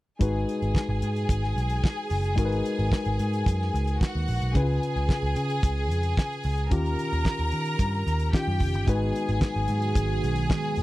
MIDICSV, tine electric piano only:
0, 0, Header, 1, 2, 480
1, 0, Start_track
1, 0, Tempo, 542005
1, 185, Time_signature, 4, 2, 24, 8
1, 9589, End_track
2, 0, Start_track
2, 0, Title_t, "Tine electric piano"
2, 0, Program_c, 0, 4
2, 171, Note_on_c, 0, 56, 61
2, 177, Note_on_c, 0, 63, 58
2, 190, Note_on_c, 0, 66, 60
2, 195, Note_on_c, 0, 71, 67
2, 361, Control_c, 0, 64, 127
2, 2064, Note_off_c, 0, 56, 0
2, 2067, Note_off_c, 0, 63, 0
2, 2073, Note_off_c, 0, 66, 0
2, 2076, Note_off_c, 0, 71, 0
2, 2087, Note_on_c, 0, 56, 65
2, 2096, Note_on_c, 0, 63, 62
2, 2105, Note_on_c, 0, 66, 56
2, 2116, Note_on_c, 0, 70, 59
2, 2169, Note_off_c, 0, 70, 0
2, 2171, Note_on_c, 0, 71, 73
2, 3981, Note_off_c, 0, 56, 0
2, 3986, Note_off_c, 0, 63, 0
2, 3990, Note_off_c, 0, 66, 0
2, 4016, Note_on_c, 0, 49, 63
2, 4023, Note_off_c, 0, 71, 0
2, 4027, Note_on_c, 0, 61, 59
2, 4038, Control_c, 0, 64, 0
2, 4038, Note_on_c, 0, 64, 49
2, 4046, Note_on_c, 0, 71, 78
2, 4090, Note_off_c, 0, 64, 0
2, 4093, Note_on_c, 0, 65, 58
2, 4169, Control_c, 0, 64, 127
2, 5905, Note_off_c, 0, 49, 0
2, 5910, Note_off_c, 0, 61, 0
2, 5919, Note_off_c, 0, 71, 0
2, 5933, Note_on_c, 0, 51, 58
2, 5939, Note_off_c, 0, 65, 0
2, 5943, Note_on_c, 0, 61, 57
2, 5950, Note_on_c, 0, 65, 63
2, 5957, Control_c, 0, 64, 0
2, 5958, Note_on_c, 0, 67, 68
2, 6092, Control_c, 0, 64, 127
2, 7349, Note_off_c, 0, 51, 0
2, 7354, Note_off_c, 0, 61, 0
2, 7358, Note_off_c, 0, 65, 0
2, 7362, Note_off_c, 0, 67, 0
2, 7382, Note_on_c, 0, 51, 52
2, 7386, Note_on_c, 0, 61, 49
2, 7391, Note_on_c, 0, 65, 51
2, 7393, Note_on_c, 0, 67, 61
2, 7850, Note_on_c, 0, 56, 62
2, 7860, Note_on_c, 0, 63, 62
2, 7863, Note_off_c, 0, 51, 0
2, 7865, Note_off_c, 0, 61, 0
2, 7867, Note_off_c, 0, 65, 0
2, 7868, Note_off_c, 0, 67, 0
2, 7868, Note_on_c, 0, 66, 59
2, 7875, Note_on_c, 0, 71, 75
2, 7877, Control_c, 0, 64, 0
2, 8016, Control_c, 0, 64, 127
2, 9589, Note_off_c, 0, 56, 0
2, 9589, Note_off_c, 0, 63, 0
2, 9589, Note_off_c, 0, 66, 0
2, 9589, Note_off_c, 0, 71, 0
2, 9589, End_track
0, 0, End_of_file